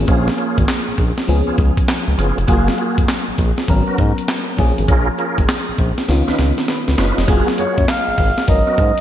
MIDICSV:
0, 0, Header, 1, 6, 480
1, 0, Start_track
1, 0, Key_signature, 6, "major"
1, 0, Tempo, 600000
1, 64, Time_signature, 4, 2, 24, 8
1, 7206, End_track
2, 0, Start_track
2, 0, Title_t, "Clarinet"
2, 0, Program_c, 0, 71
2, 6072, Note_on_c, 0, 73, 93
2, 6309, Note_on_c, 0, 77, 119
2, 6321, Note_off_c, 0, 73, 0
2, 6786, Note_off_c, 0, 77, 0
2, 6790, Note_on_c, 0, 75, 92
2, 7206, Note_off_c, 0, 75, 0
2, 7206, End_track
3, 0, Start_track
3, 0, Title_t, "Tonewheel organ"
3, 0, Program_c, 1, 16
3, 58, Note_on_c, 1, 58, 97
3, 59, Note_on_c, 1, 61, 89
3, 60, Note_on_c, 1, 65, 85
3, 62, Note_on_c, 1, 68, 102
3, 224, Note_off_c, 1, 58, 0
3, 225, Note_off_c, 1, 61, 0
3, 225, Note_off_c, 1, 65, 0
3, 226, Note_off_c, 1, 68, 0
3, 298, Note_on_c, 1, 58, 75
3, 299, Note_on_c, 1, 61, 68
3, 300, Note_on_c, 1, 65, 68
3, 302, Note_on_c, 1, 68, 85
3, 464, Note_off_c, 1, 58, 0
3, 465, Note_off_c, 1, 61, 0
3, 466, Note_off_c, 1, 65, 0
3, 466, Note_off_c, 1, 68, 0
3, 1176, Note_on_c, 1, 59, 76
3, 1177, Note_on_c, 1, 61, 72
3, 1179, Note_on_c, 1, 65, 68
3, 1180, Note_on_c, 1, 68, 81
3, 1275, Note_off_c, 1, 59, 0
3, 1276, Note_off_c, 1, 61, 0
3, 1277, Note_off_c, 1, 65, 0
3, 1278, Note_off_c, 1, 68, 0
3, 1741, Note_on_c, 1, 59, 70
3, 1744, Note_on_c, 1, 61, 60
3, 1745, Note_on_c, 1, 65, 63
3, 1746, Note_on_c, 1, 68, 82
3, 1906, Note_off_c, 1, 59, 0
3, 1907, Note_off_c, 1, 61, 0
3, 1908, Note_off_c, 1, 65, 0
3, 1908, Note_off_c, 1, 68, 0
3, 1978, Note_on_c, 1, 58, 99
3, 1980, Note_on_c, 1, 65, 84
3, 1981, Note_on_c, 1, 66, 91
3, 1982, Note_on_c, 1, 68, 99
3, 2144, Note_off_c, 1, 58, 0
3, 2145, Note_off_c, 1, 65, 0
3, 2146, Note_off_c, 1, 66, 0
3, 2147, Note_off_c, 1, 68, 0
3, 2220, Note_on_c, 1, 58, 72
3, 2220, Note_on_c, 1, 65, 66
3, 2222, Note_on_c, 1, 66, 68
3, 2223, Note_on_c, 1, 68, 78
3, 2385, Note_off_c, 1, 58, 0
3, 2386, Note_off_c, 1, 65, 0
3, 2387, Note_off_c, 1, 66, 0
3, 2387, Note_off_c, 1, 68, 0
3, 3098, Note_on_c, 1, 59, 70
3, 3098, Note_on_c, 1, 61, 69
3, 3100, Note_on_c, 1, 66, 64
3, 3101, Note_on_c, 1, 70, 82
3, 3196, Note_off_c, 1, 59, 0
3, 3197, Note_off_c, 1, 61, 0
3, 3198, Note_off_c, 1, 66, 0
3, 3198, Note_off_c, 1, 70, 0
3, 3901, Note_on_c, 1, 61, 93
3, 3904, Note_on_c, 1, 65, 91
3, 3904, Note_on_c, 1, 68, 88
3, 3907, Note_on_c, 1, 70, 102
3, 4066, Note_off_c, 1, 61, 0
3, 4068, Note_off_c, 1, 65, 0
3, 4068, Note_off_c, 1, 68, 0
3, 4069, Note_off_c, 1, 70, 0
3, 4143, Note_on_c, 1, 61, 74
3, 4146, Note_on_c, 1, 65, 65
3, 4147, Note_on_c, 1, 68, 65
3, 4148, Note_on_c, 1, 70, 87
3, 4307, Note_off_c, 1, 61, 0
3, 4308, Note_off_c, 1, 65, 0
3, 4309, Note_off_c, 1, 68, 0
3, 4309, Note_off_c, 1, 70, 0
3, 5017, Note_on_c, 1, 61, 78
3, 5018, Note_on_c, 1, 63, 65
3, 5021, Note_on_c, 1, 65, 69
3, 5022, Note_on_c, 1, 71, 82
3, 5116, Note_off_c, 1, 61, 0
3, 5117, Note_off_c, 1, 63, 0
3, 5118, Note_off_c, 1, 65, 0
3, 5118, Note_off_c, 1, 71, 0
3, 5580, Note_on_c, 1, 61, 72
3, 5582, Note_on_c, 1, 63, 67
3, 5583, Note_on_c, 1, 65, 62
3, 5585, Note_on_c, 1, 71, 76
3, 5745, Note_off_c, 1, 61, 0
3, 5747, Note_off_c, 1, 63, 0
3, 5747, Note_off_c, 1, 65, 0
3, 5748, Note_off_c, 1, 71, 0
3, 5820, Note_on_c, 1, 58, 95
3, 5821, Note_on_c, 1, 65, 85
3, 5822, Note_on_c, 1, 66, 82
3, 5824, Note_on_c, 1, 68, 104
3, 5985, Note_off_c, 1, 58, 0
3, 5986, Note_off_c, 1, 65, 0
3, 5987, Note_off_c, 1, 66, 0
3, 5987, Note_off_c, 1, 68, 0
3, 6060, Note_on_c, 1, 58, 68
3, 6063, Note_on_c, 1, 65, 65
3, 6064, Note_on_c, 1, 66, 67
3, 6065, Note_on_c, 1, 68, 82
3, 6226, Note_off_c, 1, 58, 0
3, 6227, Note_off_c, 1, 65, 0
3, 6227, Note_off_c, 1, 66, 0
3, 6228, Note_off_c, 1, 68, 0
3, 6935, Note_on_c, 1, 59, 77
3, 6936, Note_on_c, 1, 61, 71
3, 6937, Note_on_c, 1, 66, 73
3, 6940, Note_on_c, 1, 70, 83
3, 7035, Note_off_c, 1, 59, 0
3, 7035, Note_off_c, 1, 61, 0
3, 7036, Note_off_c, 1, 66, 0
3, 7037, Note_off_c, 1, 70, 0
3, 7206, End_track
4, 0, Start_track
4, 0, Title_t, "FM electric piano"
4, 0, Program_c, 2, 5
4, 0, Control_c, 2, 64, 127
4, 0, Note_on_c, 2, 53, 72
4, 0, Note_on_c, 2, 58, 69
4, 0, Note_on_c, 2, 61, 72
4, 0, Note_on_c, 2, 68, 80
4, 996, Note_off_c, 2, 53, 0
4, 1001, Note_off_c, 2, 58, 0
4, 1004, Note_off_c, 2, 61, 0
4, 1006, Note_off_c, 2, 68, 0
4, 1021, Note_on_c, 2, 53, 76
4, 1029, Note_on_c, 2, 59, 63
4, 1033, Note_on_c, 2, 61, 68
4, 1036, Control_c, 2, 64, 0
4, 1040, Note_on_c, 2, 68, 89
4, 1173, Control_c, 2, 64, 127
4, 1963, Note_off_c, 2, 53, 0
4, 1967, Note_off_c, 2, 59, 0
4, 1969, Note_off_c, 2, 61, 0
4, 1973, Note_off_c, 2, 68, 0
4, 1979, Note_on_c, 2, 54, 72
4, 1982, Note_on_c, 2, 58, 72
4, 1990, Note_on_c, 2, 65, 70
4, 1996, Control_c, 2, 64, 0
4, 1996, Note_on_c, 2, 68, 91
4, 2151, Control_c, 2, 64, 127
4, 2922, Note_off_c, 2, 54, 0
4, 2924, Note_off_c, 2, 58, 0
4, 2928, Note_off_c, 2, 65, 0
4, 2931, Note_off_c, 2, 68, 0
4, 2949, Note_on_c, 2, 54, 73
4, 2950, Note_on_c, 2, 59, 69
4, 2953, Control_c, 2, 64, 0
4, 2954, Note_on_c, 2, 61, 69
4, 2957, Note_on_c, 2, 70, 85
4, 3109, Control_c, 2, 64, 127
4, 3656, Note_on_c, 2, 53, 68
4, 3659, Note_off_c, 2, 61, 0
4, 3664, Note_on_c, 2, 58, 66
4, 3666, Note_off_c, 2, 54, 0
4, 3667, Note_off_c, 2, 59, 0
4, 3669, Note_on_c, 2, 61, 67
4, 3670, Note_off_c, 2, 70, 0
4, 3676, Control_c, 2, 64, 0
4, 3677, Note_on_c, 2, 68, 86
4, 3801, Control_c, 2, 64, 127
4, 4836, Note_off_c, 2, 53, 0
4, 4840, Note_off_c, 2, 58, 0
4, 4842, Note_off_c, 2, 61, 0
4, 4847, Note_off_c, 2, 68, 0
4, 4864, Note_on_c, 2, 51, 71
4, 4870, Note_on_c, 2, 59, 66
4, 4874, Control_c, 2, 64, 0
4, 4876, Note_on_c, 2, 61, 69
4, 4881, Note_on_c, 2, 65, 80
4, 5017, Control_c, 2, 64, 127
4, 5349, Note_on_c, 2, 71, 66
4, 5574, Note_off_c, 2, 71, 0
4, 5587, Note_on_c, 2, 73, 63
4, 5734, Note_off_c, 2, 73, 0
4, 5742, Note_on_c, 2, 75, 65
4, 5804, Note_off_c, 2, 51, 0
4, 5808, Note_off_c, 2, 59, 0
4, 5811, Note_off_c, 2, 61, 0
4, 5813, Note_off_c, 2, 65, 0
4, 5817, Note_on_c, 2, 54, 77
4, 5823, Note_on_c, 2, 58, 73
4, 5830, Note_on_c, 2, 65, 70
4, 5834, Control_c, 2, 64, 0
4, 5836, Note_on_c, 2, 68, 83
4, 5969, Note_off_c, 2, 75, 0
4, 5994, Control_c, 2, 64, 127
4, 6761, Note_off_c, 2, 54, 0
4, 6764, Note_off_c, 2, 58, 0
4, 6768, Note_off_c, 2, 65, 0
4, 6771, Note_off_c, 2, 68, 0
4, 6783, Note_on_c, 2, 54, 68
4, 6787, Note_on_c, 2, 59, 61
4, 6790, Note_on_c, 2, 61, 59
4, 6790, Note_on_c, 2, 70, 74
4, 6794, Control_c, 2, 64, 0
4, 6948, Control_c, 2, 64, 127
4, 7206, Note_off_c, 2, 54, 0
4, 7206, Note_off_c, 2, 59, 0
4, 7206, Note_off_c, 2, 61, 0
4, 7206, Note_off_c, 2, 70, 0
4, 7206, End_track
5, 0, Start_track
5, 0, Title_t, "Analog synth bass"
5, 0, Program_c, 3, 38
5, 65, Note_on_c, 3, 34, 110
5, 236, Note_off_c, 3, 34, 0
5, 465, Note_on_c, 3, 32, 89
5, 523, Note_off_c, 3, 32, 0
5, 705, Note_on_c, 3, 34, 51
5, 737, Note_off_c, 3, 34, 0
5, 787, Note_on_c, 3, 34, 88
5, 897, Note_off_c, 3, 34, 0
5, 1027, Note_on_c, 3, 37, 107
5, 1137, Note_off_c, 3, 37, 0
5, 1183, Note_on_c, 3, 37, 47
5, 1216, Note_off_c, 3, 37, 0
5, 1268, Note_on_c, 3, 37, 100
5, 1378, Note_off_c, 3, 37, 0
5, 1662, Note_on_c, 3, 37, 83
5, 1721, Note_off_c, 3, 37, 0
5, 1748, Note_on_c, 3, 30, 91
5, 1858, Note_off_c, 3, 30, 0
5, 1905, Note_on_c, 3, 29, 88
5, 1963, Note_off_c, 3, 29, 0
5, 1986, Note_on_c, 3, 30, 104
5, 2156, Note_off_c, 3, 30, 0
5, 2386, Note_on_c, 3, 29, 87
5, 2444, Note_off_c, 3, 29, 0
5, 2627, Note_on_c, 3, 34, 49
5, 2659, Note_off_c, 3, 34, 0
5, 2708, Note_on_c, 3, 34, 101
5, 2818, Note_off_c, 3, 34, 0
5, 2950, Note_on_c, 3, 32, 103
5, 3059, Note_off_c, 3, 32, 0
5, 3191, Note_on_c, 3, 44, 100
5, 3299, Note_off_c, 3, 44, 0
5, 3670, Note_on_c, 3, 34, 97
5, 3779, Note_off_c, 3, 34, 0
5, 3830, Note_on_c, 3, 32, 92
5, 3886, Note_off_c, 3, 32, 0
5, 3910, Note_on_c, 3, 34, 98
5, 4079, Note_off_c, 3, 34, 0
5, 4307, Note_on_c, 3, 32, 91
5, 4364, Note_off_c, 3, 32, 0
5, 4550, Note_on_c, 3, 34, 45
5, 4581, Note_off_c, 3, 34, 0
5, 4630, Note_on_c, 3, 34, 92
5, 4739, Note_off_c, 3, 34, 0
5, 4872, Note_on_c, 3, 37, 101
5, 4980, Note_off_c, 3, 37, 0
5, 5026, Note_on_c, 3, 37, 51
5, 5058, Note_off_c, 3, 37, 0
5, 5112, Note_on_c, 3, 37, 86
5, 5220, Note_off_c, 3, 37, 0
5, 5507, Note_on_c, 3, 37, 82
5, 5564, Note_off_c, 3, 37, 0
5, 5589, Note_on_c, 3, 30, 88
5, 5698, Note_off_c, 3, 30, 0
5, 5745, Note_on_c, 3, 29, 94
5, 5803, Note_off_c, 3, 29, 0
5, 5826, Note_on_c, 3, 30, 112
5, 5937, Note_off_c, 3, 30, 0
5, 6068, Note_on_c, 3, 42, 46
5, 6129, Note_off_c, 3, 42, 0
5, 6224, Note_on_c, 3, 42, 97
5, 6283, Note_off_c, 3, 42, 0
5, 6463, Note_on_c, 3, 32, 50
5, 6496, Note_off_c, 3, 32, 0
5, 6546, Note_on_c, 3, 32, 93
5, 6657, Note_off_c, 3, 32, 0
5, 6788, Note_on_c, 3, 32, 92
5, 6898, Note_off_c, 3, 32, 0
5, 7027, Note_on_c, 3, 44, 98
5, 7137, Note_off_c, 3, 44, 0
5, 7206, End_track
6, 0, Start_track
6, 0, Title_t, "Drums"
6, 62, Note_on_c, 9, 42, 74
6, 64, Note_on_c, 9, 36, 110
6, 142, Note_off_c, 9, 42, 0
6, 144, Note_off_c, 9, 36, 0
6, 222, Note_on_c, 9, 38, 59
6, 302, Note_off_c, 9, 38, 0
6, 306, Note_on_c, 9, 42, 70
6, 386, Note_off_c, 9, 42, 0
6, 463, Note_on_c, 9, 36, 90
6, 463, Note_on_c, 9, 42, 49
6, 543, Note_off_c, 9, 36, 0
6, 543, Note_off_c, 9, 42, 0
6, 544, Note_on_c, 9, 42, 77
6, 545, Note_on_c, 9, 38, 121
6, 549, Note_on_c, 9, 39, 93
6, 624, Note_off_c, 9, 42, 0
6, 625, Note_off_c, 9, 38, 0
6, 629, Note_off_c, 9, 39, 0
6, 784, Note_on_c, 9, 42, 72
6, 785, Note_on_c, 9, 36, 87
6, 864, Note_off_c, 9, 42, 0
6, 865, Note_off_c, 9, 36, 0
6, 941, Note_on_c, 9, 38, 67
6, 942, Note_on_c, 9, 42, 59
6, 1021, Note_off_c, 9, 38, 0
6, 1022, Note_off_c, 9, 42, 0
6, 1024, Note_on_c, 9, 42, 73
6, 1104, Note_off_c, 9, 42, 0
6, 1264, Note_on_c, 9, 42, 71
6, 1265, Note_on_c, 9, 36, 95
6, 1344, Note_off_c, 9, 42, 0
6, 1345, Note_off_c, 9, 36, 0
6, 1420, Note_on_c, 9, 36, 102
6, 1422, Note_on_c, 9, 42, 55
6, 1500, Note_off_c, 9, 36, 0
6, 1502, Note_off_c, 9, 42, 0
6, 1507, Note_on_c, 9, 38, 113
6, 1507, Note_on_c, 9, 42, 67
6, 1511, Note_on_c, 9, 39, 90
6, 1587, Note_off_c, 9, 38, 0
6, 1587, Note_off_c, 9, 42, 0
6, 1591, Note_off_c, 9, 39, 0
6, 1750, Note_on_c, 9, 42, 70
6, 1830, Note_off_c, 9, 42, 0
6, 1905, Note_on_c, 9, 42, 54
6, 1985, Note_off_c, 9, 42, 0
6, 1985, Note_on_c, 9, 36, 105
6, 1986, Note_on_c, 9, 42, 78
6, 2065, Note_off_c, 9, 36, 0
6, 2066, Note_off_c, 9, 42, 0
6, 2145, Note_on_c, 9, 38, 60
6, 2225, Note_off_c, 9, 38, 0
6, 2226, Note_on_c, 9, 42, 69
6, 2306, Note_off_c, 9, 42, 0
6, 2384, Note_on_c, 9, 36, 79
6, 2386, Note_on_c, 9, 42, 51
6, 2464, Note_off_c, 9, 36, 0
6, 2466, Note_off_c, 9, 42, 0
6, 2466, Note_on_c, 9, 42, 76
6, 2467, Note_on_c, 9, 38, 120
6, 2471, Note_on_c, 9, 39, 92
6, 2546, Note_off_c, 9, 42, 0
6, 2547, Note_off_c, 9, 38, 0
6, 2551, Note_off_c, 9, 39, 0
6, 2706, Note_on_c, 9, 36, 86
6, 2708, Note_on_c, 9, 42, 68
6, 2786, Note_off_c, 9, 36, 0
6, 2788, Note_off_c, 9, 42, 0
6, 2863, Note_on_c, 9, 38, 64
6, 2863, Note_on_c, 9, 42, 58
6, 2943, Note_off_c, 9, 38, 0
6, 2943, Note_off_c, 9, 42, 0
6, 2945, Note_on_c, 9, 42, 71
6, 2947, Note_on_c, 9, 36, 99
6, 3025, Note_off_c, 9, 42, 0
6, 3027, Note_off_c, 9, 36, 0
6, 3187, Note_on_c, 9, 36, 92
6, 3187, Note_on_c, 9, 42, 70
6, 3267, Note_off_c, 9, 36, 0
6, 3267, Note_off_c, 9, 42, 0
6, 3344, Note_on_c, 9, 42, 60
6, 3424, Note_off_c, 9, 42, 0
6, 3426, Note_on_c, 9, 38, 113
6, 3426, Note_on_c, 9, 42, 69
6, 3431, Note_on_c, 9, 39, 94
6, 3506, Note_off_c, 9, 38, 0
6, 3506, Note_off_c, 9, 42, 0
6, 3511, Note_off_c, 9, 39, 0
6, 3668, Note_on_c, 9, 36, 89
6, 3669, Note_on_c, 9, 42, 67
6, 3748, Note_off_c, 9, 36, 0
6, 3749, Note_off_c, 9, 42, 0
6, 3826, Note_on_c, 9, 42, 55
6, 3906, Note_off_c, 9, 42, 0
6, 3908, Note_on_c, 9, 36, 112
6, 3908, Note_on_c, 9, 42, 80
6, 3988, Note_off_c, 9, 36, 0
6, 3988, Note_off_c, 9, 42, 0
6, 4150, Note_on_c, 9, 42, 70
6, 4230, Note_off_c, 9, 42, 0
6, 4305, Note_on_c, 9, 36, 87
6, 4305, Note_on_c, 9, 42, 46
6, 4385, Note_off_c, 9, 36, 0
6, 4385, Note_off_c, 9, 42, 0
6, 4389, Note_on_c, 9, 42, 82
6, 4390, Note_on_c, 9, 38, 115
6, 4394, Note_on_c, 9, 39, 94
6, 4469, Note_off_c, 9, 42, 0
6, 4470, Note_off_c, 9, 38, 0
6, 4474, Note_off_c, 9, 39, 0
6, 4627, Note_on_c, 9, 36, 89
6, 4629, Note_on_c, 9, 42, 68
6, 4707, Note_off_c, 9, 36, 0
6, 4709, Note_off_c, 9, 42, 0
6, 4783, Note_on_c, 9, 38, 68
6, 4784, Note_on_c, 9, 42, 57
6, 4863, Note_off_c, 9, 38, 0
6, 4864, Note_off_c, 9, 42, 0
6, 4868, Note_on_c, 9, 42, 76
6, 4870, Note_on_c, 9, 38, 56
6, 4948, Note_off_c, 9, 42, 0
6, 4950, Note_off_c, 9, 38, 0
6, 5026, Note_on_c, 9, 38, 53
6, 5106, Note_off_c, 9, 38, 0
6, 5108, Note_on_c, 9, 42, 75
6, 5109, Note_on_c, 9, 38, 69
6, 5188, Note_off_c, 9, 42, 0
6, 5189, Note_off_c, 9, 38, 0
6, 5263, Note_on_c, 9, 38, 63
6, 5264, Note_on_c, 9, 42, 57
6, 5343, Note_off_c, 9, 38, 0
6, 5344, Note_off_c, 9, 42, 0
6, 5346, Note_on_c, 9, 38, 84
6, 5346, Note_on_c, 9, 42, 68
6, 5426, Note_off_c, 9, 38, 0
6, 5426, Note_off_c, 9, 42, 0
6, 5503, Note_on_c, 9, 38, 65
6, 5583, Note_off_c, 9, 38, 0
6, 5585, Note_on_c, 9, 38, 97
6, 5587, Note_on_c, 9, 42, 63
6, 5665, Note_off_c, 9, 38, 0
6, 5667, Note_off_c, 9, 42, 0
6, 5746, Note_on_c, 9, 38, 79
6, 5747, Note_on_c, 9, 42, 53
6, 5824, Note_on_c, 9, 82, 79
6, 5826, Note_off_c, 9, 38, 0
6, 5826, Note_off_c, 9, 42, 0
6, 5826, Note_on_c, 9, 36, 107
6, 5826, Note_on_c, 9, 42, 84
6, 5904, Note_off_c, 9, 82, 0
6, 5906, Note_off_c, 9, 36, 0
6, 5906, Note_off_c, 9, 42, 0
6, 5983, Note_on_c, 9, 82, 42
6, 5984, Note_on_c, 9, 38, 58
6, 6063, Note_off_c, 9, 82, 0
6, 6064, Note_off_c, 9, 38, 0
6, 6064, Note_on_c, 9, 42, 68
6, 6144, Note_off_c, 9, 42, 0
6, 6221, Note_on_c, 9, 82, 49
6, 6222, Note_on_c, 9, 36, 87
6, 6222, Note_on_c, 9, 42, 52
6, 6301, Note_off_c, 9, 82, 0
6, 6302, Note_off_c, 9, 36, 0
6, 6302, Note_off_c, 9, 42, 0
6, 6305, Note_on_c, 9, 42, 78
6, 6306, Note_on_c, 9, 38, 125
6, 6306, Note_on_c, 9, 82, 68
6, 6310, Note_on_c, 9, 39, 97
6, 6385, Note_off_c, 9, 42, 0
6, 6386, Note_off_c, 9, 38, 0
6, 6386, Note_off_c, 9, 82, 0
6, 6390, Note_off_c, 9, 39, 0
6, 6463, Note_on_c, 9, 82, 53
6, 6543, Note_off_c, 9, 82, 0
6, 6543, Note_on_c, 9, 82, 49
6, 6544, Note_on_c, 9, 36, 87
6, 6546, Note_on_c, 9, 46, 71
6, 6623, Note_off_c, 9, 82, 0
6, 6624, Note_off_c, 9, 36, 0
6, 6626, Note_off_c, 9, 46, 0
6, 6698, Note_on_c, 9, 82, 55
6, 6702, Note_on_c, 9, 38, 67
6, 6702, Note_on_c, 9, 42, 60
6, 6778, Note_off_c, 9, 82, 0
6, 6782, Note_off_c, 9, 38, 0
6, 6782, Note_off_c, 9, 42, 0
6, 6782, Note_on_c, 9, 42, 72
6, 6782, Note_on_c, 9, 82, 61
6, 6785, Note_on_c, 9, 36, 113
6, 6862, Note_off_c, 9, 42, 0
6, 6862, Note_off_c, 9, 82, 0
6, 6865, Note_off_c, 9, 36, 0
6, 6937, Note_on_c, 9, 82, 45
6, 7017, Note_off_c, 9, 82, 0
6, 7021, Note_on_c, 9, 82, 55
6, 7023, Note_on_c, 9, 42, 70
6, 7025, Note_on_c, 9, 36, 92
6, 7101, Note_off_c, 9, 82, 0
6, 7103, Note_off_c, 9, 42, 0
6, 7105, Note_off_c, 9, 36, 0
6, 7179, Note_on_c, 9, 82, 52
6, 7180, Note_on_c, 9, 42, 56
6, 7206, Note_off_c, 9, 42, 0
6, 7206, Note_off_c, 9, 82, 0
6, 7206, End_track
0, 0, End_of_file